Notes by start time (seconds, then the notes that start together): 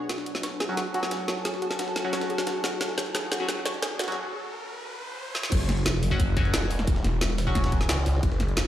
Already playing: B4 F#5
0.09 F#4 C#5 G#5 A5, snare, closed hi-hat, riser
0.18 A4, snare
0.26 closed hi-hat
0.35 snare, closed hi-hat
0.43 C#5, snare, closed hi-hat
0.60 G#4, snare, closed hi-hat
0.69 F#3 C#4 F#4
0.77 F#4, snare, closed hi-hat
0.94 F#3 C#4 F#4, closed hi-hat
1.03 snare, closed hi-hat
1.11 snare, closed hi-hat
1.28 C#5, snare, closed hi-hat
1.37 snare
1.45 G#4, snare, closed hi-hat
1.54 snare
1.62 F#4, closed hi-hat
1.71 snare
1.79 F#4, snare, closed hi-hat
1.88 snare
1.96 snare, closed hi-hat
2.05 F#3 C#4 F#4
2.13 C#5, snare, closed hi-hat
2.21 snare, closed hi-hat
2.30 G#4, closed hi-hat
2.38 snare, closed hi-hat
2.47 F#4, snare, closed hi-hat
2.64 F#4, snare, closed hi-hat
2.81 snare, closed hi-hat
2.89 snare
2.98 C#5, snare, closed hi-hat
3.06 closed hi-hat
3.15 G#4, snare, closed hi-hat
3.32 F#4, snare, closed hi-hat
3.40 F#3 C#4 F#4
3.49 snare, closed hi-hat
3.65 C#5, snare, closed hi-hat
3.74 closed hi-hat
3.82 G#4, snare, closed hi-hat
3.99 F#4, snare, closed hi-hat
4.04 snare, closed hi-hat
4.08 F#3 C#4 F#4, snare, closed hi-hat
4.12 snare, closed hi-hat
5.35 snare
5.43 snare
5.52 F#1, kick, closed hi-hat, crash
5.60 snare
5.69 snare, closed hi-hat
5.77 closed hi-hat
5.86 snare, closed hi-hat
6.03 F#1, closed hi-hat, open hi-hat
6.11 F#3 C#4 F#4, kick
6.20 kick, closed hi-hat
6.37 F#3 C#4 F#4, kick, closed hi-hat
6.45 closed hi-hat
6.54 E1, snare, closed hi-hat
6.71 closed hi-hat, open hi-hat
6.79 snare
6.87 kick, closed hi-hat
6.96 snare
7.04 E1, snare, closed hi-hat
7.21 snare, closed hi-hat
7.30 snare
7.38 snare, closed hi-hat, open hi-hat
7.47 F#3 C#4 F#4, kick
7.55 kick, snare, closed hi-hat
7.64 snare, closed hi-hat
7.72 kick, closed hi-hat
7.81 snare, closed hi-hat
7.89 C#2, snare, closed hi-hat
8.06 snare, closed hi-hat, open hi-hat
8.23 F#1, kick, closed hi-hat
8.32 snare
8.40 snare, closed hi-hat
8.48 closed hi-hat
8.57 snare, closed hi-hat